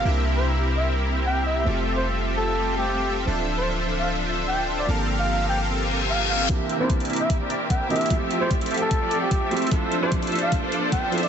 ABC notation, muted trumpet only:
X:1
M:4/4
L:1/16
Q:"Swing 16ths" 1/4=149
K:Cmix
V:1 name="Muted trumpet"
z3 c z3 e z4 g2 e2 | z3 c z3 A4 G4 z | z3 c z3 f z4 g2 z d | z3 f3 g z4 z f z f2 |
z3 c z3 e z4 g2 e2 | z3 c z3 A4 G4 z | z3 c z3 f z4 g2 z d |]